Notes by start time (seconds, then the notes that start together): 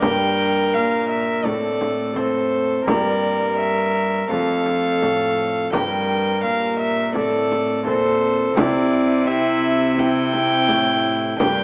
0.00 G2 A#3 D4 G4 A#4 G5, frame drum
0.74 A#2 F5
1.09 E5
1.42 A2 A3 C4 E4 A4 D5, frame drum
1.46 A2
1.81 frame drum
2.14 A3 C4 E4 A4 C5, frame drum
2.85 G2 A#3 G4 A#4 D5, frame drum
3.59 E5
4.27 F2 A3 C4 A4, frame drum
4.31 F2 F5
4.66 frame drum
5.02 A2, frame drum
5.70 G2 D4 G4 A#4 G5, frame drum
6.44 A#2 F5
6.79 E5
7.12 A2 C4 E4 A4 D5, frame drum
7.16 A3
7.52 frame drum
7.83 A#2 C4 E4 A4, frame drum
7.87 A4 C5
8.53 C3 C4 E4 G4
8.57 E4 D5, frame drum
9.24 C4 E4 G4 E5
9.95 C4 E4 G4, frame drum
9.99 E4 G5
10.33 frame drum
10.69 A2, frame drum
11.36 G2 A#3 D4 G4 G5, frame drum
11.40 G2 D4